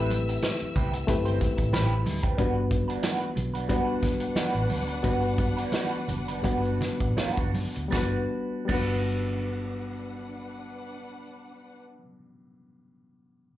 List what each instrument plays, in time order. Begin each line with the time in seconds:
Already playing: fingered electric bass A1, reed electric piano A3 C4 E4 G4 B4, clean electric guitar C4 G4 B4, string section E5 E6
0.10 muted clean electric guitar stroke, closed hi-hat, muted conga
0.29 muted clean electric guitar stroke, closed hi-hat
0.42 muted clean electric guitar stroke, snare, closed hi-hat, high conga
0.60 muted fingered electric bass stroke, closed hi-hat
0.75 fingered electric bass C2, clean electric guitar C4 G4 B4, kick, closed hi-hat, muted conga, low conga
0.93 muted clean electric guitar stroke, closed hi-hat
1.07 fingered electric bass G2, reed electric piano A3 C4 E4 G4 B4, muted clean electric guitar stroke, kick, closed hi-hat, muted conga
1.25 fingered electric bass G1, clean electric guitar C4 G4 C5, closed hi-hat
1.40 muted clean electric guitar stroke, kick, closed hi-hat, muted conga, low conga
1.57 fingered electric bass A1, muted clean electric guitar stroke, kick, closed hi-hat
1.73 fingered electric bass A1, clean electric guitar C4 G4 B4, reed electric piano B5, snare, closed hi-hat, high conga
2.05 fingered electric bass D2, muted clean electric guitar stroke, open hi-hat, high conga
2.23 clean electric guitar C4 G4 B4, kick, closed hi-hat
2.37 fingered electric bass G1, reed electric piano G3 B3 D4 F#4 B4, clean electric guitar D4 F#4 B4, kick, closed hi-hat
2.71 muted clean electric guitar stroke, kick, closed hi-hat, muted conga
2.88 clean electric guitar D4 F#4 B4, closed hi-hat
3.02 clean electric guitar D4 F#4 B4, snare, closed hi-hat, high conga
3.21 closed hi-hat
3.35 fingered electric bass B1, muted clean electric guitar stroke, closed hi-hat, muted conga, low conga
3.54 clean electric guitar D4 F#4 B4, closed hi-hat
3.68 reed electric piano G3 B3 D4 F#4 B4, clean electric guitar D4 F#4 B4, string section D4 B4 F#5, kick, closed hi-hat, muted conga
4.02 muted clean electric guitar stroke, kick, snare, closed hi-hat, muted conga, low conga
4.20 muted clean electric guitar stroke, closed hi-hat
4.36 clean electric guitar D4 F#4 B4, snare, closed hi-hat, high conga
4.55 fingered electric bass A1, closed hi-hat
4.70 fingered electric bass D2, muted clean electric guitar stroke, open hi-hat, high conga
4.88 muted clean electric guitar stroke, closed hi-hat
5.03 fingered electric bass G1, reed electric piano G3 B3 D4 F#4 B4, clean electric guitar D4 F#4 B4, kick, closed hi-hat
5.22 closed hi-hat
5.38 muted clean electric guitar stroke, kick, closed hi-hat, muted conga
5.57 clean electric guitar D4 F#4 B4, closed hi-hat
5.72 clean electric guitar D4 F#4 B4, snare, closed hi-hat, high conga
6.08 fingered electric bass F#1, muted clean electric guitar stroke, closed hi-hat, muted conga, low conga
6.28 clean electric guitar D4 F#4 B4, closed hi-hat
6.43 fingered electric bass G1, reed electric piano G3 B3 D4 F#4 B4, clean electric guitar D4 F#4 B4, kick, closed hi-hat, muted conga
6.65 closed hi-hat
6.81 muted clean electric guitar stroke, snare, closed hi-hat, muted conga, low conga
7.00 fingered electric bass A1, muted clean electric guitar stroke, kick, closed hi-hat
7.17 clean electric guitar C#4 F4 A#4, muted fingered electric bass stroke, snare, closed hi-hat, high conga
7.31 clean electric guitar D4 F#4 B4
7.37 fingered electric bass G1, kick, closed hi-hat
7.54 muted clean electric guitar stroke, open hi-hat, high conga
7.75 fingered electric bass D2, muted clean electric guitar stroke, closed hi-hat
7.88 reed electric piano G3 B3, clean electric guitar D4, muted conga
7.93 fingered electric bass G1, reed electric piano D4 F#4, string section D4 B4 F#5, clean electric guitar F#4 B4, kick, snare
7.97 reed electric piano B4
8.65 reed electric piano G3 B3, clean electric guitar D4, crash
8.69 fingered electric bass G1, reed electric piano D4 F#4, string section D4 B4 F#5, clean electric guitar F#4 B4, kick, muted conga
8.74 reed electric piano B4